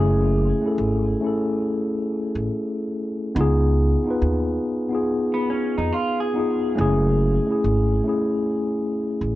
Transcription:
Already playing: upright bass F#1, tine electric piano A3 C#4 E4 G#4
0.62 tine electric piano A3 C#4
0.66 tine electric piano E4 A4
0.78 upright bass G#1
1.21 tine electric piano A3 C#4 E4
1.26 tine electric piano A4
2.35 upright bass A1
3.35 upright bass C#2, tine electric piano B3 D#4 F4
3.41 tine electric piano G#4
4.05 tine electric piano B3 D#4
4.09 tine electric piano F4 B4
4.22 upright bass D#2
4.89 tine electric piano B3 D#4 F4
4.95 tine electric piano G#4
5.34 clean electric guitar B3
5.50 clean electric guitar C#4
5.78 upright bass F2, clean electric guitar D#4
5.93 clean electric guitar F4
6.20 clean electric guitar G#4
6.34 tine electric piano B3 D#4 F4
6.39 tine electric piano G#4
6.75 upright bass F#1, tine electric piano A3 C#4 E4
6.81 tine electric piano G#4
7.47 tine electric piano A3 C#4 E4
7.52 tine electric piano G#4
7.64 upright bass G#1
8.04 tine electric piano A3 C#4 E4
8.09 tine electric piano G#4
9.21 upright bass A1

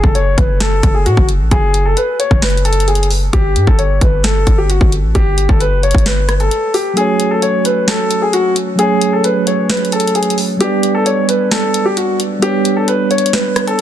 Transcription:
0.03 808-style bass F#1, grand piano A4, kick
0.15 grand piano C#5, closed hi-hat
0.37 808-style bass F#1, grand piano B4, kick, closed hi-hat
0.60 grand piano A4, snare, closed hi-hat
0.83 808-style bass F#1, kick, closed hi-hat
0.94 grand piano G#4
1.06 808-style bass A2, grand piano F#4, closed hi-hat
1.17 808-style bass F#1, kick
1.29 closed hi-hat
1.40 808-style bass A1
1.51 808-style bass F#1, grand piano G#4, kick, closed hi-hat
1.74 closed hi-hat
1.85 grand piano A4
1.97 grand piano B4, closed hi-hat
2.19 grand piano C#5, closed hi-hat
2.31 808-style bass F#1, kick
2.42 grand piano B4, snare, closed hi-hat
2.50 closed hi-hat
2.57 closed hi-hat
2.65 grand piano A4, closed hi-hat
2.73 closed hi-hat
2.80 closed hi-hat
2.88 grand piano G#4, closed hi-hat
2.95 closed hi-hat
3.03 closed hi-hat
3.11 open hi-hat
3.33 808-style bass G1, grand piano G4, kick, closed hi-hat
3.56 808-style bass G2, closed hi-hat
3.67 808-style bass G1, grand piano A4, kick
3.79 grand piano C#5, closed hi-hat
4.01 808-style bass G1, grand piano B4, kick, closed hi-hat
4.24 grand piano A4, snare, closed hi-hat
4.47 808-style bass G1, kick, closed hi-hat
4.58 grand piano G4
4.70 grand piano F#4, closed hi-hat
4.81 808-style bass G1, kick
4.92 closed hi-hat
5.04 808-style bass A1
5.15 808-style bass G1, grand piano G4, kick, closed hi-hat
5.38 closed hi-hat
5.49 808-style bass G1, grand piano A4, kick
5.60 grand piano B4, closed hi-hat
5.72 808-style bass F#1
5.83 grand piano C#5, closed hi-hat
5.91 808-style bass G1, kick, closed hi-hat
5.98 closed hi-hat
6.06 grand piano B4, snare, closed hi-hat
6.29 cross-stick, closed hi-hat
6.40 grand piano A4, closed hi-hat
6.51 closed hi-hat
6.74 grand piano G4, open hi-hat
6.93 tine electric piano F#3 A3 C#4, grand piano G#4, closed hi-hat
6.99 tine electric piano F#4 C#5
7.20 closed hi-hat
7.31 grand piano A4
7.42 grand piano C#5, closed hi-hat
7.65 grand piano B4, closed hi-hat
7.88 grand piano A4, snare, closed hi-hat
8.11 closed hi-hat
8.22 grand piano G#4
8.33 grand piano F#4, closed hi-hat
8.56 closed hi-hat
8.76 tine electric piano F#3 A3 C#4, grand piano G#4, closed hi-hat
8.81 tine electric piano G#4 C#5
9.01 closed hi-hat
9.13 grand piano A4
9.24 grand piano B4, closed hi-hat
9.47 grand piano C#5, closed hi-hat
9.70 grand piano B4, snare, closed hi-hat
9.77 closed hi-hat
9.85 closed hi-hat
9.92 grand piano A4, closed hi-hat
10.00 closed hi-hat
10.07 closed hi-hat
10.15 grand piano G#4, closed hi-hat
10.23 closed hi-hat
10.30 closed hi-hat
10.38 open hi-hat
10.57 tine electric piano G3 B3 D4, grand piano G4, closed hi-hat
10.62 tine electric piano B4 D5
10.83 closed hi-hat
10.95 grand piano A4
11.06 grand piano C#5, closed hi-hat
11.29 grand piano B4, closed hi-hat
11.51 grand piano A4, snare, closed hi-hat
11.74 closed hi-hat
11.85 grand piano G4
11.97 grand piano F#4, closed hi-hat
12.20 closed hi-hat
12.39 tine electric piano G3 B3 D4, grand piano G4, closed hi-hat
12.44 tine electric piano B4 C#5
12.65 closed hi-hat
12.76 grand piano A4
12.88 grand piano B4, closed hi-hat
13.11 grand piano C#5, closed hi-hat
13.18 closed hi-hat
13.26 closed hi-hat
13.33 grand piano B4, snare, closed hi-hat
13.56 cross-stick, closed hi-hat
13.67 grand piano A4, closed hi-hat

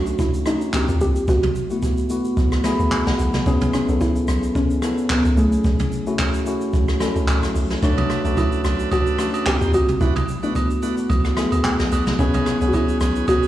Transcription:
Already playing: log drum bass B1, tine electric piano A3 C#4 D4 F#4, synth pluck F#4
0.06 shaker
0.19 synth pluck E4, kick, shaker
0.34 shaker
0.46 tine electric piano A3 C#4 D4 F#4, synth pluck D#4, cross-stick, shaker
0.61 shaker
0.73 tine electric piano A#3 C4 F4 G4, kick, clap, shaker
0.88 log drum bass D#2, shaker
1.01 log drum bass C2, synth pluck G4, shaker
1.16 shaker
1.28 log drum bass B1, synth pluck F#4, kick, shaker
1.43 mid tom, shaker
1.55 shaker
1.70 tine electric piano A3 B3 E4 F#4, shaker
1.82 kick, shaker
1.97 shaker
2.10 tine electric piano A3 B3 E4 F#4, shaker
2.25 shaker
2.37 log drum bass B1, kick, shaker
2.52 cross-stick, shaker
2.64 tine electric piano A3 B3 E4 G#4 B5, cross-stick, snare, shaker
2.79 log drum bass D2, shaker
2.92 tine electric piano G#5, kick, clap, shaker
3.07 log drum bass B1, tine electric piano F#5, snare, shaker
3.19 log drum bass B1, shaker
3.34 snare, mid tom, shaker
3.46 log drum bass B1, tine electric piano B3 C#4 E4 G#4, synth pluck C#4, kick, shaker
3.61 mid tom, shaker
3.74 synth pluck C#4, cross-stick, shaker
3.89 log drum bass B1, tine electric piano B3 C#4 E4 A4, shaker
4.01 synth pluck E4, kick, shaker
4.16 shaker
4.28 log drum bass B1, cross-stick, shaker
4.43 shaker
4.55 synth pluck C#4, kick, shaker
4.70 shaker
4.82 tine electric piano B3 C#4 E4 A4, cross-stick, shaker
4.98 shaker
5.10 synth pluck B3, kick, clap, shaker
5.25 log drum bass C#2, shaker
5.37 log drum bass B1, tine electric piano A3 C#4 E4 G#4, synth pluck A3, shaker
5.52 shaker
5.64 log drum bass B1, kick, shaker
5.79 mid tom, shaker
5.92 shaker
6.07 tine electric piano A3 C#4 E4 F#4, shaker
6.19 kick, clap, shaker
6.34 shaker
6.46 tine electric piano A3 C#4 E4 F#4, shaker
6.61 shaker
6.73 log drum bass B1, kick, shaker
6.88 cross-stick, shaker
7.00 tine electric piano A3 C#4 E4 A4, cross-stick, snare, shaker
7.16 log drum bass C#2, shaker
7.28 kick, clap, shaker
7.43 log drum bass B1, cross-stick, shaker
7.55 log drum bass B1, open hi-hat, shaker
7.70 snare, shaker
7.82 log drum bass B1, tine electric piano A3 D4 F#4 C#5, tonewheel organ D4 A4 B4, synth pluck D4, kick, hi-hat pedal, shaker
7.98 mid tom, high agogo, shaker
8.10 cross-stick, shaker
8.25 log drum bass B1, tine electric piano A3 C#4 D4 F#4, tonewheel organ D4 A4 B4, shaker
8.37 synth pluck E4, kick, high agogo, shaker
8.52 shaker
8.64 log drum bass B1, tonewheel organ D4 A4 B4, cross-stick, shaker
8.79 shaker
8.91 tonewheel organ D4 A4 B4, synth pluck F#4, kick, high agogo, shaker
9.07 shaker
9.19 tine electric piano A3 C#4 D4 F#4, cross-stick, shaker
9.34 tonewheel organ D4 A4 B4, high agogo, shaker
9.46 tine electric piano A#3 C4 F4 G4, synth pluck G4, kick, clap, low woodblock, shaker
9.61 log drum bass D#2, tonewheel organ D#4 G4 C5, shaker
9.74 log drum bass C2, synth pluck F#4, high agogo, shaker
9.89 mid tom, shaker
10.00 log drum bass B1, tonewheel organ D4 F#4 B4, synth pluck E4, kick, shaker
10.16 mid tom, high agogo, shaker
10.28 shaker
10.43 tine electric piano A3 B3 E4 F#4, tonewheel organ D4 F#4 B4, synth pluck D4, shaker
10.55 kick, high agogo, shaker
10.70 shaker
10.82 tine electric piano A3 B3 E4 F#4, tonewheel organ D4 F#4 B4, shaker
10.97 shaker
11.10 log drum bass B1, kick, high agogo, shaker
11.25 cross-stick, shaker
11.37 tine electric piano A3 B3 E4 G#4, cross-stick, snare, shaker
11.52 log drum bass D2, high agogo, shaker
11.64 kick, clap, low woodblock, shaker
11.79 log drum bass B1, snare, shaker
11.91 log drum bass B1, tonewheel organ D4 F#4 B4, high agogo, shaker
12.07 snare, mid tom, shaker
12.19 log drum bass B1, tine electric piano B3 C#4 E4 G#4, tonewheel organ C#4 G#4 B4, synth pluck C#4, kick, shaker
12.34 mid tom, high agogo, shaker
12.46 cross-stick, shaker
12.61 log drum bass B1, tine electric piano B3 C#4 E4 G#4, tonewheel organ C#4 G#4 B4, shaker
12.68 synth pluck F#4
12.73 synth pluck E4, kick, high agogo, shaker
12.88 shaker
13.00 log drum bass B1, tonewheel organ C#4 G#4 B4, cross-stick, shaker
13.16 shaker
13.28 tonewheel organ C#4 G#4 B4, synth pluck F#4, kick, high agogo, shaker
13.43 shaker

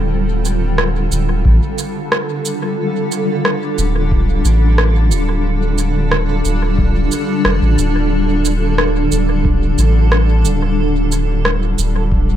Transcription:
Already playing: sub bass D1, ambient pad D3 G3 C4 F4 A4
0.45 cabasa
0.78 cross-stick
1.11 sub bass D1, cabasa
1.45 sub bass A1, kick
1.78 cabasa
2.12 ambient pad D4, cross-stick
2.45 cabasa
3.12 cabasa
3.45 cross-stick
3.78 sub bass D1, cabasa
4.12 kick
4.45 sub bass A1, cabasa
4.78 cross-stick
5.11 sub bass D1, cabasa
5.78 cabasa
6.11 cross-stick
6.45 sub bass D1, cabasa
6.78 kick
7.12 cabasa
7.45 sub bass F1, cross-stick
7.62 sub bass A1
7.78 sub bass D1, cabasa
8.45 cabasa
8.78 cross-stick
9.12 sub bass D1, cabasa
9.45 kick
9.78 sub bass A1, cabasa
10.12 cross-stick
10.45 sub bass D1, cabasa
11.12 cabasa
11.45 cross-stick
11.78 sub bass D1, cabasa
12.12 kick

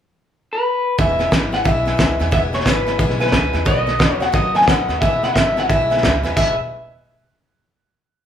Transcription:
0.53 clean electric guitar B4
0.98 upright bass E1, steel-string acoustic guitar E2 B2 E3 G#3 B3 E4, honky-tonk piano B4 E5 G#5, clean electric guitar E5, kick, snare
1.19 steel-string acoustic guitar E3 G#3 B3 E4, honky-tonk piano B4 E5 G#5, snare
1.31 upright bass G#1, steel-string acoustic guitar E3 G#3 B3 E4, honky-tonk piano B4 E5 G#5, kick, snare, hi-hat pedal
1.52 steel-string acoustic guitar E3 G#3 B3 E4, honky-tonk piano B4 E5 G#5, clean electric guitar F#5, snare
1.64 upright bass B1, steel-string acoustic guitar E2 B2 E3 G#3 B3 E4, honky-tonk piano B4 E5 G#5, clean electric guitar E5, kick, snare
1.85 steel-string acoustic guitar E3 G#3 B3 E4, honky-tonk piano B4 E5 G#5, snare
1.97 upright bass C#2, steel-string acoustic guitar E3 G#3 B3 E4, honky-tonk piano B4 E5 G#5, kick, snare, hi-hat pedal
2.19 upright bass E2, steel-string acoustic guitar E3 G#3 B3 E4, honky-tonk piano B4 E5 G#5, snare
2.31 upright bass E1, steel-string acoustic guitar E2 B2 E3 G#3 B3 E4, honky-tonk piano B4 E5 F#5, clean electric guitar E5, kick, snare
2.53 steel-string acoustic guitar E3 G#3 B3 E4, honky-tonk piano B4 E5 G#5, clean electric guitar C#5, snare
2.60 snare
2.65 upright bass G#1, steel-string acoustic guitar E3 G#3 B3 E4, honky-tonk piano B4 E5 G#5, clean electric guitar B4, kick, snare, hi-hat pedal
2.86 steel-string acoustic guitar E3 G#3 B3 E4, honky-tonk piano B4 E5 G#5, snare
2.98 upright bass B1, steel-string acoustic guitar E2 B2 E3 G#3 B3 E4, honky-tonk piano B4 E5 F#5, kick, snare
3.10 snare
3.20 steel-string acoustic guitar E3 G#3 B3 E4, honky-tonk piano B4 E5 G#5, clean electric guitar B4, snare
3.27 snare
3.32 upright bass C#2, steel-string acoustic guitar E3 G#3 B3 E4, honky-tonk piano B4 E5 G#5, kick, snare, hi-hat pedal
3.53 upright bass E2, steel-string acoustic guitar E3 G#3 B3 E4, honky-tonk piano B4 E5 G#5, snare
3.65 upright bass B1, steel-string acoustic guitar B2 D#3 A3 B3 F#4, honky-tonk piano B4 D#5 F#5, clean electric guitar D#5, kick, snare
3.86 steel-string acoustic guitar A3 B3 F#4, honky-tonk piano B4 D#5 F#5, snare
3.99 upright bass D#2, steel-string acoustic guitar D#3 A3 B3 F#4, honky-tonk piano B4 D#5 F#5, kick, snare, hi-hat pedal
4.20 steel-string acoustic guitar A3 B3 F#4, honky-tonk piano B4 D#5 F#5, clean electric guitar F#5, snare
4.32 upright bass F#2, steel-string acoustic guitar B2 D#3 A3 B3 F#4, honky-tonk piano B4 D#5 F#5, clean electric guitar D#5, kick, snare
4.55 steel-string acoustic guitar A3 B3 F#4, honky-tonk piano B4 D#5 A5, clean electric guitar G#5, snare
4.61 snare
4.67 upright bass G#2, steel-string acoustic guitar D#3 A3 B3 F#4, honky-tonk piano B4 D#5 F#5, clean electric guitar F#5, kick, snare, hi-hat pedal
4.88 upright bass D#2, steel-string acoustic guitar A3 B3 F#4, honky-tonk piano B4 D#5 F#5, snare
5.01 upright bass E1, steel-string acoustic guitar E2 B2 E3 G#3 B3 E4, honky-tonk piano B4 E5 G#5, clean electric guitar E5, kick, snare
5.23 steel-string acoustic guitar E3 G#3 B3 E4, honky-tonk piano B4 E5 B5, clean electric guitar F#5, snare
5.34 upright bass G#1, steel-string acoustic guitar E3 G#3 B3 E4, honky-tonk piano B4 E5 F#5, clean electric guitar E5, kick, snare, hi-hat pedal
5.56 steel-string acoustic guitar E3 G#3 B3 E4, honky-tonk piano B4 E5 G#5, clean electric guitar F#5, snare
5.69 upright bass B1, steel-string acoustic guitar E2 B2 E3 G#3 B3 E4, honky-tonk piano B4 E5 G#5, clean electric guitar E5, kick, snare
5.90 steel-string acoustic guitar E3 G#3 B3 E4, honky-tonk piano B4 E5 G#5, snare
5.97 snare
6.02 upright bass C#2, steel-string acoustic guitar E3 G#3 B3 E4, honky-tonk piano B4 E5 G#5, kick, snare, hi-hat pedal
6.23 upright bass E2, steel-string acoustic guitar E3 G#3 B3 E4, honky-tonk piano B4 E5 G#5, snare
6.36 upright bass E1, steel-string acoustic guitar E2 B2 E3 G#3 B3 E4, honky-tonk piano B4 E5 G#5, clean electric guitar E5, kick, crash

